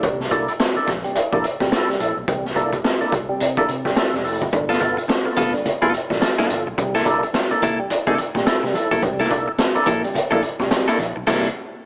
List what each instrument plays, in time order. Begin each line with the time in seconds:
0.03 fingered electric bass C2, tonewheel organ C3 G3, kick, closed hi-hat
0.20 snare
0.31 fingered electric bass C2, tonewheel organ A#3 D4 E4 A4, kick, closed hi-hat
0.48 tonewheel organ E4 A4, closed hi-hat
0.59 snare, closed hi-hat
0.76 tonewheel organ A#3 D4 E4 A4, muted fingered electric bass stroke
0.87 fingered electric bass A#1, kick, snare, closed hi-hat
1.04 tonewheel organ C3 G3, closed hi-hat
1.15 muted fingered electric bass stroke, closed hi-hat
1.32 fingered electric bass A#1, tonewheel organ A#3 D4 E4 A4, kick
1.44 closed hi-hat
1.60 fingered electric bass C2, tonewheel organ C3 G3, kick, snare
1.71 tonewheel organ E4 A4, snare, closed hi-hat
1.88 tonewheel organ C3 G3, snare
1.99 fingered electric bass A#1, tonewheel organ E4 A4, closed hi-hat
2.17 fingered electric bass B1
2.28 fingered electric bass C2, tonewheel organ C3 G3, kick, closed hi-hat
2.45 snare
2.56 fingered electric bass C2, tonewheel organ A#3 D4 E4 A4, kick, closed hi-hat
2.73 tonewheel organ E4 A4, kick, closed hi-hat
2.84 snare, closed hi-hat
3.01 tonewheel organ A#3 D4 E4 A4, muted fingered electric bass stroke
3.12 fingered electric bass C2, kick, closed hi-hat
3.29 tonewheel organ C3 G3
3.40 fingered electric bass C3, closed hi-hat
3.57 tonewheel organ A#3 D4 E4 A4, kick
3.68 fingered electric bass C3, closed hi-hat
3.85 fingered electric bass C2, tonewheel organ C3 G3, kick, snare
3.97 tonewheel organ E4 A4, snare, closed hi-hat
4.14 fingered electric bass E1, tonewheel organ C3 G3, snare
4.24 fingered electric bass F1, tonewheel organ E4 A4, open hi-hat
4.42 fingered electric bass F#1, kick
4.53 fingered electric bass G1, tonewheel organ G2 D3, muted clean electric guitar stroke, kick, closed hi-hat, muted conga
4.69 clean electric guitar B3 F4 A4, snare
4.80 fingered electric bass G1, tonewheel organ B3 F4 A4, muted clean electric guitar stroke, kick, closed hi-hat
4.97 tonewheel organ F4 A4, muted clean electric guitar stroke, closed hi-hat
5.08 muted clean electric guitar stroke, snare, closed hi-hat, high conga
5.25 tonewheel organ B3 F4 A4, muted fingered electric bass stroke, muted clean electric guitar stroke
5.37 fingered electric bass F1, clean electric guitar B3 F4 A4, kick, snare, closed hi-hat
5.54 tonewheel organ G2 D3, muted clean electric guitar stroke, closed hi-hat
5.65 muted clean electric guitar stroke, muted fingered electric bass stroke, closed hi-hat, muted conga, low conga
5.82 fingered electric bass F1, tonewheel organ B3 F4 A4, clean electric guitar B3 F4 A4, kick
5.93 muted clean electric guitar stroke, closed hi-hat
6.10 fingered electric bass A1, tonewheel organ G2 D3, muted clean electric guitar stroke, kick, snare
6.21 tonewheel organ F4 A4, muted clean electric guitar stroke, snare, closed hi-hat, high conga
6.38 tonewheel organ G2 D3, clean electric guitar B3 F4 A4, snare
6.49 fingered electric bass G1, tonewheel organ F4 A4, muted clean electric guitar stroke, closed hi-hat, high conga
6.67 fingered electric bass B1, muted clean electric guitar stroke
6.78 fingered electric bass C2, tonewheel organ C3 G3, muted clean electric guitar stroke, kick, closed hi-hat, muted conga
6.95 clean electric guitar A#3 E4 A4, snare
7.05 fingered electric bass C2, tonewheel organ A#3 D4 E4 A4, kick, closed hi-hat
7.23 tonewheel organ E4 A4, muted clean electric guitar stroke, closed hi-hat
7.34 muted clean electric guitar stroke, snare, closed hi-hat, high conga
7.51 tonewheel organ A#3 D4 E4 A4, muted fingered electric bass stroke, muted clean electric guitar stroke
7.62 fingered electric bass C2, clean electric guitar A#3 E4 A4, kick, closed hi-hat
7.79 tonewheel organ C3 G3, muted clean electric guitar stroke
7.90 muted fingered electric bass stroke, muted clean electric guitar stroke, closed hi-hat, muted conga
8.07 fingered electric bass C3, tonewheel organ A#3 D4 E4 A4, clean electric guitar A#3 E4 A4, kick
8.18 closed hi-hat, muted conga
8.35 fingered electric bass A#2, tonewheel organ C3 G3, muted clean electric guitar stroke, kick, snare
8.46 tonewheel organ E4 A4, muted clean electric guitar stroke, snare, closed hi-hat, high conga
8.63 fingered electric bass C3, tonewheel organ C3 G3, muted clean electric guitar stroke, snare
8.74 tonewheel organ E4 A4, closed hi-hat, high conga
8.91 fingered electric bass B1, clean electric guitar A#3 E4 A4, kick
9.02 fingered electric bass C2, tonewheel organ C3 G3, muted clean electric guitar stroke, kick, closed hi-hat, muted conga
9.20 clean electric guitar A#3 E4 A4, snare
9.30 fingered electric bass C2, tonewheel organ A#3 D4 E4 A4, muted clean electric guitar stroke, kick, closed hi-hat
9.47 tonewheel organ E4 A4, muted clean electric guitar stroke
9.58 muted clean electric guitar stroke, snare, closed hi-hat, high conga
9.75 tonewheel organ A#3 D4 E4 A4, muted clean electric guitar stroke, muted fingered electric bass stroke
9.86 fingered electric bass A#1, clean electric guitar A#3 E4 A4, kick, closed hi-hat
10.03 tonewheel organ C3 G3, muted clean electric guitar stroke, closed hi-hat
10.14 muted clean electric guitar stroke, muted fingered electric bass stroke, closed hi-hat, muted conga, low conga
10.31 fingered electric bass A#1, tonewheel organ A#3 D4 E4 A4, clean electric guitar A#3 E4 A4, kick
10.42 muted clean electric guitar stroke, closed hi-hat, muted conga
10.60 fingered electric bass C2, tonewheel organ C3 G3, muted clean electric guitar stroke, kick, snare
10.71 tonewheel organ C3 G3, muted clean electric guitar stroke, snare, closed hi-hat, high conga
10.88 tonewheel organ A#3 D4 E4 A4, clean electric guitar A#3 E4 A4, snare
10.99 fingered electric bass A#1, tonewheel organ E4 A4, muted clean electric guitar stroke, closed hi-hat, high conga
11.16 fingered electric bass B1, muted clean electric guitar stroke
11.27 fingered electric bass C2, tonewheel organ C3 G3, clean electric guitar A#3 E4 A4, kick, snare, crash